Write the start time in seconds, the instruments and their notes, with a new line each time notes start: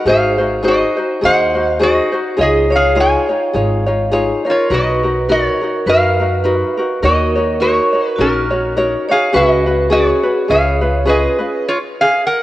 0.05 upright bass G#1, ukulele D#4 F#4 G#4 C5, resonator guitar played with a steel bar G#4 F5, vibraphone C5
0.38 ukulele D#4 F#4 C5
0.63 ukulele D#4 F#4 G#4 C5, vibraphone C5
0.68 resonator guitar played with a steel bar F#4 D#5
0.96 ukulele D#4 F#4 C5
1.21 upright bass D#2, ukulele D#4 F#4 G#4 C5, vibraphone D#5, resonator guitar played with a steel bar F#5
1.26 resonator guitar played with a steel bar C5
1.54 ukulele D#4 F#4 C5
1.67 resonator guitar played with a steel bar F5
1.79 ukulele D#4 F#4 G#4 C5, resonator guitar played with a steel bar F#4 D#5, vibraphone C5
2.12 ukulele D#4 F#4 C5
2.37 upright bass C#2, ukulele D#4 F4 G#4 C#5, vibraphone G#4
2.41 resonator guitar played with a steel bar G#4 D#5
2.70 ukulele D#4 F4 C#5, vibraphone C#5
2.76 resonator guitar played with a steel bar G#4 F5
2.95 ukulele D#4 F4 G#4 C#5, vibraphone F5
3.00 resonator guitar played with a steel bar C#5 G#5
3.29 ukulele D#4 F4 C#5
3.53 upright bass G#1, ukulele D#4 F4 G#4 C#5
3.86 ukulele D#4 F4 C#5
4.12 ukulele D#4 F4 G#4 C#5
4.45 ukulele D#4 F4 C#5, vibraphone A#4
4.50 resonator guitar played with a steel bar F4 C#5
4.70 upright bass B1, ukulele D#4 F#4 A#4 B4, resonator guitar played with a steel bar F#4, vibraphone B4
4.74 resonator guitar played with a steel bar D#5
5.03 ukulele D#4 F#4 A#4
5.29 ukulele D#4 F#4 A#4 B4, resonator guitar played with a steel bar F#4 C#5, vibraphone A#4
5.61 ukulele D#4 F#4 A#4
5.86 upright bass F#2, ukulele D#4 F#4 A#4 B4, resonator guitar played with a steel bar A#4 F5, vibraphone B4
6.19 ukulele D#4 F#4 A#4
6.44 ukulele D#4 F#4 A#4 B4
6.77 ukulele D#4 F#4 A#4
7.02 upright bass D#2, ukulele D#4 F#4 A#4 C#5, resonator guitar played with a steel bar F#4 D#5, vibraphone A#4
7.35 ukulele D#4 F#4 C#5
7.60 ukulele D#4 F#4 A#4 C#5, resonator guitar played with a steel bar F#4 C#5, vibraphone A#4
7.93 ukulele D#4 F#4 C#5
8.08 resonator guitar played with a steel bar B4
8.16 upright bass A#1, ukulele D#4 F#4 A#4 C#5, vibraphone F#4
8.21 resonator guitar played with a steel bar C#4 A#4
8.51 ukulele D#4 F#4 C#5
8.77 ukulele D#4 F#4 A#4 C#5
9.09 ukulele D#4 F#4 C#5, resonator guitar played with a steel bar G#4 F5, vibraphone C#5
9.33 upright bass C#2, ukulele C#4 F#4 G#4 B4, vibraphone B4, resonator guitar played with a steel bar D#5
9.37 resonator guitar played with a steel bar F#4
9.66 ukulele C#4 F#4 B4
9.90 ukulele C#4 F#4 G#4 B4, resonator guitar played with a steel bar F#4 C#5, vibraphone G#4
10.23 ukulele C#4 F#4 B4
10.48 upright bass C#2, ukulele C#4 F4 G#4 B4, resonator guitar played with a steel bar G#4 F5, vibraphone C#5
10.81 ukulele C#4 F4 B4
11.05 ukulele C#4 F4 G#4 B4, resonator guitar played with a steel bar G#4 D#5, vibraphone B4
11.39 ukulele C#4 F4 B4
11.68 resonator guitar played with a steel bar F4 C#5
12.01 resonator guitar played with a steel bar G#4 F5
12.26 resonator guitar played with a steel bar A#4 F#5